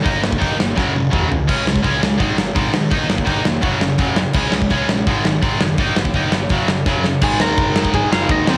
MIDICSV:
0, 0, Header, 1, 5, 480
1, 0, Start_track
1, 0, Tempo, 357995
1, 62, Time_signature, 4, 2, 24, 8
1, 11495, End_track
2, 0, Start_track
2, 0, Title_t, "Lead electric guitar"
2, 0, Program_c, 0, 29
2, 9698, Note_on_c, 0, 68, 84
2, 9706, Note_on_c, 0, 80, 112
2, 9908, Note_off_c, 0, 68, 0
2, 9933, Note_on_c, 0, 70, 86
2, 9934, Note_off_c, 0, 80, 0
2, 9940, Note_on_c, 0, 82, 98
2, 10591, Note_off_c, 0, 70, 0
2, 10650, Note_on_c, 0, 68, 75
2, 10662, Note_off_c, 0, 82, 0
2, 10663, Note_on_c, 0, 80, 102
2, 10862, Note_off_c, 0, 68, 0
2, 10869, Note_off_c, 0, 80, 0
2, 10886, Note_on_c, 0, 65, 65
2, 10889, Note_on_c, 0, 77, 77
2, 11100, Note_off_c, 0, 65, 0
2, 11122, Note_off_c, 0, 77, 0
2, 11139, Note_on_c, 0, 63, 77
2, 11146, Note_on_c, 0, 75, 91
2, 11347, Note_off_c, 0, 63, 0
2, 11378, Note_off_c, 0, 75, 0
2, 11378, Note_on_c, 0, 72, 90
2, 11384, Note_on_c, 0, 60, 67
2, 11495, Note_off_c, 0, 60, 0
2, 11495, Note_off_c, 0, 72, 0
2, 11495, End_track
3, 0, Start_track
3, 0, Title_t, "Distorted electric guitar"
3, 0, Program_c, 1, 30
3, 34, Note_on_c, 1, 51, 91
3, 45, Note_on_c, 1, 58, 96
3, 48, Note_on_c, 1, 63, 87
3, 270, Note_off_c, 1, 51, 0
3, 279, Note_off_c, 1, 58, 0
3, 281, Note_off_c, 1, 63, 0
3, 286, Note_on_c, 1, 51, 80
3, 294, Note_on_c, 1, 58, 89
3, 498, Note_off_c, 1, 51, 0
3, 501, Note_off_c, 1, 58, 0
3, 514, Note_on_c, 1, 51, 89
3, 517, Note_on_c, 1, 58, 97
3, 526, Note_on_c, 1, 63, 104
3, 743, Note_off_c, 1, 51, 0
3, 755, Note_off_c, 1, 58, 0
3, 759, Note_on_c, 1, 51, 65
3, 760, Note_off_c, 1, 63, 0
3, 771, Note_on_c, 1, 58, 69
3, 987, Note_off_c, 1, 51, 0
3, 992, Note_off_c, 1, 58, 0
3, 1020, Note_on_c, 1, 42, 91
3, 1034, Note_on_c, 1, 49, 90
3, 1038, Note_on_c, 1, 54, 91
3, 1247, Note_off_c, 1, 42, 0
3, 1254, Note_off_c, 1, 49, 0
3, 1256, Note_off_c, 1, 54, 0
3, 1273, Note_on_c, 1, 42, 70
3, 1277, Note_on_c, 1, 49, 75
3, 1471, Note_off_c, 1, 42, 0
3, 1479, Note_off_c, 1, 49, 0
3, 1487, Note_on_c, 1, 42, 92
3, 1496, Note_on_c, 1, 49, 96
3, 1497, Note_on_c, 1, 54, 91
3, 1720, Note_off_c, 1, 42, 0
3, 1725, Note_off_c, 1, 49, 0
3, 1725, Note_off_c, 1, 54, 0
3, 1738, Note_on_c, 1, 42, 66
3, 1738, Note_on_c, 1, 49, 82
3, 1956, Note_off_c, 1, 42, 0
3, 1956, Note_off_c, 1, 49, 0
3, 1979, Note_on_c, 1, 49, 94
3, 1983, Note_on_c, 1, 56, 85
3, 1991, Note_on_c, 1, 61, 101
3, 2202, Note_off_c, 1, 49, 0
3, 2203, Note_off_c, 1, 56, 0
3, 2213, Note_off_c, 1, 61, 0
3, 2218, Note_on_c, 1, 49, 75
3, 2219, Note_on_c, 1, 56, 90
3, 2430, Note_off_c, 1, 49, 0
3, 2437, Note_off_c, 1, 56, 0
3, 2446, Note_on_c, 1, 49, 88
3, 2457, Note_on_c, 1, 56, 99
3, 2459, Note_on_c, 1, 61, 112
3, 2681, Note_off_c, 1, 49, 0
3, 2686, Note_off_c, 1, 56, 0
3, 2687, Note_off_c, 1, 61, 0
3, 2703, Note_on_c, 1, 49, 67
3, 2713, Note_on_c, 1, 56, 71
3, 2917, Note_on_c, 1, 44, 83
3, 2919, Note_off_c, 1, 49, 0
3, 2921, Note_off_c, 1, 56, 0
3, 2925, Note_on_c, 1, 51, 85
3, 2937, Note_on_c, 1, 56, 95
3, 3156, Note_off_c, 1, 44, 0
3, 3160, Note_off_c, 1, 51, 0
3, 3166, Note_off_c, 1, 56, 0
3, 3179, Note_on_c, 1, 44, 69
3, 3182, Note_on_c, 1, 51, 73
3, 3398, Note_off_c, 1, 44, 0
3, 3399, Note_off_c, 1, 51, 0
3, 3417, Note_on_c, 1, 44, 95
3, 3418, Note_on_c, 1, 51, 96
3, 3426, Note_on_c, 1, 56, 88
3, 3632, Note_off_c, 1, 44, 0
3, 3641, Note_off_c, 1, 51, 0
3, 3648, Note_on_c, 1, 44, 69
3, 3651, Note_off_c, 1, 56, 0
3, 3657, Note_on_c, 1, 51, 85
3, 3873, Note_off_c, 1, 44, 0
3, 3877, Note_off_c, 1, 51, 0
3, 3892, Note_on_c, 1, 51, 81
3, 3895, Note_on_c, 1, 58, 83
3, 3904, Note_on_c, 1, 63, 101
3, 4111, Note_off_c, 1, 51, 0
3, 4120, Note_off_c, 1, 58, 0
3, 4127, Note_on_c, 1, 51, 76
3, 4130, Note_off_c, 1, 63, 0
3, 4136, Note_on_c, 1, 58, 79
3, 4340, Note_off_c, 1, 51, 0
3, 4356, Note_on_c, 1, 51, 100
3, 4357, Note_off_c, 1, 58, 0
3, 4374, Note_on_c, 1, 58, 108
3, 4377, Note_on_c, 1, 63, 96
3, 4584, Note_off_c, 1, 51, 0
3, 4600, Note_off_c, 1, 58, 0
3, 4600, Note_on_c, 1, 51, 69
3, 4608, Note_off_c, 1, 63, 0
3, 4616, Note_on_c, 1, 58, 75
3, 4830, Note_off_c, 1, 51, 0
3, 4838, Note_off_c, 1, 58, 0
3, 4848, Note_on_c, 1, 42, 85
3, 4857, Note_on_c, 1, 49, 90
3, 4862, Note_on_c, 1, 54, 105
3, 5071, Note_off_c, 1, 42, 0
3, 5087, Note_on_c, 1, 42, 72
3, 5088, Note_off_c, 1, 49, 0
3, 5090, Note_off_c, 1, 54, 0
3, 5101, Note_on_c, 1, 49, 85
3, 5314, Note_off_c, 1, 42, 0
3, 5321, Note_off_c, 1, 49, 0
3, 5343, Note_on_c, 1, 42, 93
3, 5357, Note_on_c, 1, 49, 106
3, 5363, Note_on_c, 1, 54, 100
3, 5571, Note_off_c, 1, 42, 0
3, 5578, Note_off_c, 1, 49, 0
3, 5581, Note_off_c, 1, 54, 0
3, 5597, Note_on_c, 1, 42, 72
3, 5604, Note_on_c, 1, 49, 82
3, 5808, Note_off_c, 1, 42, 0
3, 5809, Note_off_c, 1, 49, 0
3, 5825, Note_on_c, 1, 49, 92
3, 5838, Note_on_c, 1, 56, 86
3, 5854, Note_on_c, 1, 61, 87
3, 6053, Note_off_c, 1, 49, 0
3, 6059, Note_off_c, 1, 56, 0
3, 6067, Note_off_c, 1, 61, 0
3, 6071, Note_on_c, 1, 49, 77
3, 6084, Note_on_c, 1, 56, 79
3, 6286, Note_off_c, 1, 49, 0
3, 6293, Note_off_c, 1, 56, 0
3, 6309, Note_on_c, 1, 49, 104
3, 6317, Note_on_c, 1, 56, 99
3, 6322, Note_on_c, 1, 61, 107
3, 6535, Note_off_c, 1, 49, 0
3, 6539, Note_off_c, 1, 56, 0
3, 6541, Note_off_c, 1, 61, 0
3, 6555, Note_on_c, 1, 49, 63
3, 6566, Note_on_c, 1, 56, 79
3, 6768, Note_off_c, 1, 49, 0
3, 6774, Note_off_c, 1, 56, 0
3, 6799, Note_on_c, 1, 44, 95
3, 6809, Note_on_c, 1, 56, 100
3, 6810, Note_on_c, 1, 51, 95
3, 7014, Note_off_c, 1, 44, 0
3, 7015, Note_off_c, 1, 51, 0
3, 7025, Note_off_c, 1, 56, 0
3, 7030, Note_on_c, 1, 44, 65
3, 7032, Note_on_c, 1, 51, 78
3, 7246, Note_off_c, 1, 44, 0
3, 7247, Note_off_c, 1, 51, 0
3, 7261, Note_on_c, 1, 44, 92
3, 7274, Note_on_c, 1, 56, 104
3, 7275, Note_on_c, 1, 51, 102
3, 7491, Note_off_c, 1, 44, 0
3, 7498, Note_off_c, 1, 51, 0
3, 7498, Note_off_c, 1, 56, 0
3, 7529, Note_on_c, 1, 44, 72
3, 7535, Note_on_c, 1, 51, 80
3, 7736, Note_off_c, 1, 44, 0
3, 7739, Note_off_c, 1, 51, 0
3, 7758, Note_on_c, 1, 51, 82
3, 7762, Note_on_c, 1, 58, 88
3, 7764, Note_on_c, 1, 63, 99
3, 7980, Note_off_c, 1, 51, 0
3, 7982, Note_off_c, 1, 58, 0
3, 7983, Note_off_c, 1, 63, 0
3, 8002, Note_on_c, 1, 51, 79
3, 8011, Note_on_c, 1, 58, 80
3, 8212, Note_off_c, 1, 51, 0
3, 8217, Note_off_c, 1, 58, 0
3, 8241, Note_on_c, 1, 51, 94
3, 8247, Note_on_c, 1, 63, 104
3, 8253, Note_on_c, 1, 58, 99
3, 8462, Note_off_c, 1, 51, 0
3, 8464, Note_off_c, 1, 63, 0
3, 8467, Note_off_c, 1, 58, 0
3, 8491, Note_on_c, 1, 58, 75
3, 8497, Note_on_c, 1, 51, 65
3, 8697, Note_off_c, 1, 58, 0
3, 8700, Note_off_c, 1, 51, 0
3, 8726, Note_on_c, 1, 42, 87
3, 8727, Note_on_c, 1, 49, 96
3, 8735, Note_on_c, 1, 54, 98
3, 8944, Note_off_c, 1, 42, 0
3, 8944, Note_off_c, 1, 49, 0
3, 8948, Note_off_c, 1, 54, 0
3, 8965, Note_on_c, 1, 49, 74
3, 8966, Note_on_c, 1, 42, 67
3, 9173, Note_off_c, 1, 49, 0
3, 9174, Note_off_c, 1, 42, 0
3, 9200, Note_on_c, 1, 42, 90
3, 9208, Note_on_c, 1, 49, 94
3, 9216, Note_on_c, 1, 54, 95
3, 9420, Note_off_c, 1, 42, 0
3, 9425, Note_off_c, 1, 49, 0
3, 9428, Note_off_c, 1, 54, 0
3, 9446, Note_on_c, 1, 42, 67
3, 9457, Note_on_c, 1, 49, 82
3, 9653, Note_off_c, 1, 42, 0
3, 9659, Note_off_c, 1, 49, 0
3, 9670, Note_on_c, 1, 44, 87
3, 9692, Note_on_c, 1, 51, 100
3, 9709, Note_on_c, 1, 56, 97
3, 11322, Note_off_c, 1, 56, 0
3, 11331, Note_off_c, 1, 44, 0
3, 11338, Note_on_c, 1, 56, 91
3, 11339, Note_off_c, 1, 51, 0
3, 11355, Note_on_c, 1, 51, 74
3, 11375, Note_on_c, 1, 44, 73
3, 11495, Note_off_c, 1, 44, 0
3, 11495, Note_off_c, 1, 51, 0
3, 11495, Note_off_c, 1, 56, 0
3, 11495, End_track
4, 0, Start_track
4, 0, Title_t, "Picked electric bass"
4, 0, Program_c, 2, 34
4, 75, Note_on_c, 2, 31, 95
4, 253, Note_off_c, 2, 31, 0
4, 318, Note_on_c, 2, 31, 83
4, 495, Note_off_c, 2, 31, 0
4, 558, Note_on_c, 2, 31, 81
4, 735, Note_off_c, 2, 31, 0
4, 809, Note_on_c, 2, 31, 76
4, 982, Note_off_c, 2, 31, 0
4, 1043, Note_on_c, 2, 30, 92
4, 1218, Note_off_c, 2, 30, 0
4, 1275, Note_on_c, 2, 30, 95
4, 1454, Note_off_c, 2, 30, 0
4, 1516, Note_on_c, 2, 39, 91
4, 1995, Note_off_c, 2, 39, 0
4, 1995, Note_on_c, 2, 37, 86
4, 2174, Note_off_c, 2, 37, 0
4, 2232, Note_on_c, 2, 37, 84
4, 2412, Note_off_c, 2, 37, 0
4, 2473, Note_on_c, 2, 37, 81
4, 2653, Note_off_c, 2, 37, 0
4, 2705, Note_on_c, 2, 37, 83
4, 2888, Note_off_c, 2, 37, 0
4, 2946, Note_on_c, 2, 32, 92
4, 3129, Note_off_c, 2, 32, 0
4, 3175, Note_on_c, 2, 32, 85
4, 3362, Note_off_c, 2, 32, 0
4, 3434, Note_on_c, 2, 32, 99
4, 3614, Note_off_c, 2, 32, 0
4, 3659, Note_on_c, 2, 44, 86
4, 3908, Note_on_c, 2, 31, 94
4, 3928, Note_off_c, 2, 44, 0
4, 4090, Note_off_c, 2, 31, 0
4, 4133, Note_on_c, 2, 31, 98
4, 4321, Note_off_c, 2, 31, 0
4, 4388, Note_on_c, 2, 31, 92
4, 4571, Note_off_c, 2, 31, 0
4, 4613, Note_on_c, 2, 29, 75
4, 4802, Note_off_c, 2, 29, 0
4, 4870, Note_on_c, 2, 30, 88
4, 5052, Note_off_c, 2, 30, 0
4, 5100, Note_on_c, 2, 30, 90
4, 5286, Note_off_c, 2, 30, 0
4, 5347, Note_on_c, 2, 30, 100
4, 5714, Note_off_c, 2, 30, 0
4, 5824, Note_on_c, 2, 37, 89
4, 6009, Note_off_c, 2, 37, 0
4, 6052, Note_on_c, 2, 37, 89
4, 6242, Note_off_c, 2, 37, 0
4, 6315, Note_on_c, 2, 37, 85
4, 6496, Note_off_c, 2, 37, 0
4, 6542, Note_on_c, 2, 34, 76
4, 6728, Note_off_c, 2, 34, 0
4, 6797, Note_on_c, 2, 32, 94
4, 6977, Note_off_c, 2, 32, 0
4, 7028, Note_on_c, 2, 32, 89
4, 7212, Note_off_c, 2, 32, 0
4, 7275, Note_on_c, 2, 32, 96
4, 7456, Note_off_c, 2, 32, 0
4, 7511, Note_on_c, 2, 30, 84
4, 7759, Note_off_c, 2, 30, 0
4, 7759, Note_on_c, 2, 31, 89
4, 7939, Note_off_c, 2, 31, 0
4, 7981, Note_on_c, 2, 31, 97
4, 8167, Note_off_c, 2, 31, 0
4, 8232, Note_on_c, 2, 31, 87
4, 8415, Note_off_c, 2, 31, 0
4, 8468, Note_on_c, 2, 31, 84
4, 8652, Note_off_c, 2, 31, 0
4, 8715, Note_on_c, 2, 30, 82
4, 8896, Note_off_c, 2, 30, 0
4, 8960, Note_on_c, 2, 30, 90
4, 9140, Note_off_c, 2, 30, 0
4, 9197, Note_on_c, 2, 30, 102
4, 9560, Note_off_c, 2, 30, 0
4, 9682, Note_on_c, 2, 32, 95
4, 9873, Note_off_c, 2, 32, 0
4, 9919, Note_on_c, 2, 39, 89
4, 10111, Note_off_c, 2, 39, 0
4, 10155, Note_on_c, 2, 30, 91
4, 10545, Note_off_c, 2, 30, 0
4, 10642, Note_on_c, 2, 32, 94
4, 10832, Note_off_c, 2, 32, 0
4, 10864, Note_on_c, 2, 30, 105
4, 11061, Note_off_c, 2, 30, 0
4, 11118, Note_on_c, 2, 39, 99
4, 11309, Note_off_c, 2, 39, 0
4, 11349, Note_on_c, 2, 39, 93
4, 11495, Note_off_c, 2, 39, 0
4, 11495, End_track
5, 0, Start_track
5, 0, Title_t, "Drums"
5, 76, Note_on_c, 9, 36, 118
5, 78, Note_on_c, 9, 46, 61
5, 210, Note_off_c, 9, 36, 0
5, 213, Note_off_c, 9, 46, 0
5, 315, Note_on_c, 9, 38, 102
5, 435, Note_on_c, 9, 36, 98
5, 449, Note_off_c, 9, 38, 0
5, 558, Note_off_c, 9, 36, 0
5, 558, Note_on_c, 9, 36, 99
5, 561, Note_on_c, 9, 46, 58
5, 692, Note_off_c, 9, 36, 0
5, 695, Note_off_c, 9, 46, 0
5, 804, Note_on_c, 9, 38, 116
5, 939, Note_off_c, 9, 38, 0
5, 1040, Note_on_c, 9, 36, 109
5, 1049, Note_on_c, 9, 38, 58
5, 1174, Note_off_c, 9, 36, 0
5, 1183, Note_off_c, 9, 38, 0
5, 1291, Note_on_c, 9, 48, 64
5, 1425, Note_off_c, 9, 48, 0
5, 1516, Note_on_c, 9, 36, 117
5, 1524, Note_on_c, 9, 45, 100
5, 1650, Note_off_c, 9, 36, 0
5, 1658, Note_off_c, 9, 45, 0
5, 1764, Note_on_c, 9, 43, 95
5, 1899, Note_off_c, 9, 43, 0
5, 1994, Note_on_c, 9, 49, 102
5, 1996, Note_on_c, 9, 36, 105
5, 2128, Note_off_c, 9, 49, 0
5, 2130, Note_off_c, 9, 36, 0
5, 2243, Note_on_c, 9, 38, 100
5, 2354, Note_on_c, 9, 36, 91
5, 2377, Note_off_c, 9, 38, 0
5, 2469, Note_on_c, 9, 46, 59
5, 2472, Note_off_c, 9, 36, 0
5, 2472, Note_on_c, 9, 36, 91
5, 2603, Note_off_c, 9, 46, 0
5, 2606, Note_off_c, 9, 36, 0
5, 2721, Note_on_c, 9, 38, 117
5, 2855, Note_off_c, 9, 38, 0
5, 2952, Note_on_c, 9, 36, 104
5, 2953, Note_on_c, 9, 46, 57
5, 3086, Note_off_c, 9, 36, 0
5, 3087, Note_off_c, 9, 46, 0
5, 3194, Note_on_c, 9, 38, 105
5, 3328, Note_off_c, 9, 38, 0
5, 3429, Note_on_c, 9, 46, 63
5, 3431, Note_on_c, 9, 36, 112
5, 3563, Note_off_c, 9, 46, 0
5, 3565, Note_off_c, 9, 36, 0
5, 3669, Note_on_c, 9, 38, 111
5, 3803, Note_off_c, 9, 38, 0
5, 3901, Note_on_c, 9, 46, 60
5, 3907, Note_on_c, 9, 36, 108
5, 4035, Note_off_c, 9, 46, 0
5, 4042, Note_off_c, 9, 36, 0
5, 4152, Note_on_c, 9, 38, 102
5, 4267, Note_on_c, 9, 36, 89
5, 4286, Note_off_c, 9, 38, 0
5, 4377, Note_on_c, 9, 46, 59
5, 4386, Note_off_c, 9, 36, 0
5, 4386, Note_on_c, 9, 36, 92
5, 4511, Note_off_c, 9, 46, 0
5, 4520, Note_off_c, 9, 36, 0
5, 4629, Note_on_c, 9, 38, 113
5, 4763, Note_off_c, 9, 38, 0
5, 4857, Note_on_c, 9, 46, 60
5, 4868, Note_on_c, 9, 36, 106
5, 4991, Note_off_c, 9, 46, 0
5, 5002, Note_off_c, 9, 36, 0
5, 5112, Note_on_c, 9, 38, 103
5, 5246, Note_off_c, 9, 38, 0
5, 5339, Note_on_c, 9, 46, 65
5, 5349, Note_on_c, 9, 36, 109
5, 5473, Note_off_c, 9, 46, 0
5, 5483, Note_off_c, 9, 36, 0
5, 5583, Note_on_c, 9, 38, 115
5, 5717, Note_off_c, 9, 38, 0
5, 5810, Note_on_c, 9, 49, 100
5, 5827, Note_on_c, 9, 36, 115
5, 5944, Note_off_c, 9, 49, 0
5, 5961, Note_off_c, 9, 36, 0
5, 6061, Note_on_c, 9, 38, 97
5, 6191, Note_on_c, 9, 36, 93
5, 6195, Note_off_c, 9, 38, 0
5, 6304, Note_on_c, 9, 46, 58
5, 6313, Note_off_c, 9, 36, 0
5, 6313, Note_on_c, 9, 36, 90
5, 6438, Note_off_c, 9, 46, 0
5, 6447, Note_off_c, 9, 36, 0
5, 6558, Note_on_c, 9, 38, 106
5, 6692, Note_off_c, 9, 38, 0
5, 6797, Note_on_c, 9, 36, 107
5, 6800, Note_on_c, 9, 46, 59
5, 6931, Note_off_c, 9, 36, 0
5, 6934, Note_off_c, 9, 46, 0
5, 7040, Note_on_c, 9, 38, 102
5, 7174, Note_off_c, 9, 38, 0
5, 7275, Note_on_c, 9, 36, 114
5, 7277, Note_on_c, 9, 46, 62
5, 7410, Note_off_c, 9, 36, 0
5, 7411, Note_off_c, 9, 46, 0
5, 7517, Note_on_c, 9, 38, 115
5, 7651, Note_off_c, 9, 38, 0
5, 7747, Note_on_c, 9, 46, 54
5, 7754, Note_on_c, 9, 36, 118
5, 7881, Note_off_c, 9, 46, 0
5, 7888, Note_off_c, 9, 36, 0
5, 7997, Note_on_c, 9, 38, 113
5, 8115, Note_on_c, 9, 36, 96
5, 8131, Note_off_c, 9, 38, 0
5, 8228, Note_on_c, 9, 46, 54
5, 8234, Note_off_c, 9, 36, 0
5, 8234, Note_on_c, 9, 36, 84
5, 8362, Note_off_c, 9, 46, 0
5, 8368, Note_off_c, 9, 36, 0
5, 8474, Note_on_c, 9, 38, 108
5, 8608, Note_off_c, 9, 38, 0
5, 8705, Note_on_c, 9, 46, 63
5, 8717, Note_on_c, 9, 36, 101
5, 8839, Note_off_c, 9, 46, 0
5, 8851, Note_off_c, 9, 36, 0
5, 8959, Note_on_c, 9, 38, 112
5, 9093, Note_off_c, 9, 38, 0
5, 9198, Note_on_c, 9, 38, 71
5, 9199, Note_on_c, 9, 36, 112
5, 9332, Note_off_c, 9, 38, 0
5, 9333, Note_off_c, 9, 36, 0
5, 9441, Note_on_c, 9, 38, 98
5, 9575, Note_off_c, 9, 38, 0
5, 9671, Note_on_c, 9, 49, 118
5, 9678, Note_on_c, 9, 36, 123
5, 9806, Note_off_c, 9, 49, 0
5, 9813, Note_off_c, 9, 36, 0
5, 9920, Note_on_c, 9, 38, 111
5, 10054, Note_off_c, 9, 38, 0
5, 10155, Note_on_c, 9, 51, 76
5, 10160, Note_on_c, 9, 36, 119
5, 10289, Note_off_c, 9, 51, 0
5, 10294, Note_off_c, 9, 36, 0
5, 10400, Note_on_c, 9, 38, 116
5, 10520, Note_on_c, 9, 36, 88
5, 10535, Note_off_c, 9, 38, 0
5, 10641, Note_off_c, 9, 36, 0
5, 10641, Note_on_c, 9, 36, 103
5, 10645, Note_on_c, 9, 51, 75
5, 10775, Note_off_c, 9, 36, 0
5, 10779, Note_off_c, 9, 51, 0
5, 10895, Note_on_c, 9, 38, 123
5, 11030, Note_off_c, 9, 38, 0
5, 11118, Note_on_c, 9, 51, 80
5, 11120, Note_on_c, 9, 36, 125
5, 11252, Note_off_c, 9, 51, 0
5, 11254, Note_off_c, 9, 36, 0
5, 11362, Note_on_c, 9, 38, 119
5, 11495, Note_off_c, 9, 38, 0
5, 11495, End_track
0, 0, End_of_file